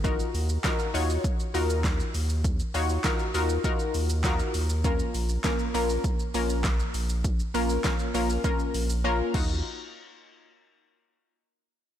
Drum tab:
CC |----------------|----------------|----------------|--------------x-|
HH |x-o-x-o-x-o-x-o-|x-o-x-o-x-o-x-o-|x-o-x-o-x-o-x-o-|x-o-x-o-x-o-----|
SH |xxxxxxxxxxxxxxxx|xxxxxxxxxxxxxxxx|xxxxxxxxxxxxxxxx|xxxxxxxxxxxx----|
CP |----x-------x---|----x-------x---|----x-------x---|----x-----------|
SD |----o-------o---|----o-------o---|----o-------o---|----o-----------|
BD |o---o---o---o---|o---o---o---o---|o---o---o---o---|o---o---o-----o-|

CC |----------------|
HH |----------------|
SH |----------------|
CP |----------------|
SD |----------------|
BD |----------------|